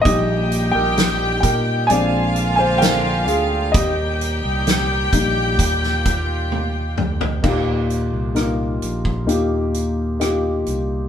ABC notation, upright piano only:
X:1
M:4/4
L:1/16
Q:1/4=65
K:Eb
V:1 name="Upright piano"
[Ge]3 [Bg]3 [Bg]2 [da]3 [ca] [Bg]2 [Af]2 | [Ge]4 z12 | [B,EFG]4 [B,EFB]4 [B,EFG]4 [B,EFG]4 |]
V:2 name="Upright piano"
[G,B,E]2 z6 [A,CD]2 z6 | z6 [G,B,E]2 z8 | B,,6 z8 z2 |]